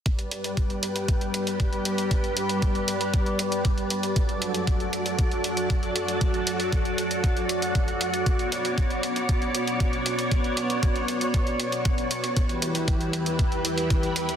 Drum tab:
HH |xxxxxxxxxxxxxxxx|xxxxxxxxxxxxxxxx|xxxxxxxxxxxxxxxx|xxxxxxxxxxxxxxxx|
BD |o---o---o---o---|o---o---o---o---|o---o---o---o---|o---o---o---o---|

HH |xxxxxxxxxxxxxxxx|xxxxxxxxxxxxxxxx|xxxxxxxxxxxxxxxx|
BD |o---o---o---o---|o---o---o---o---|o---o---o---o---|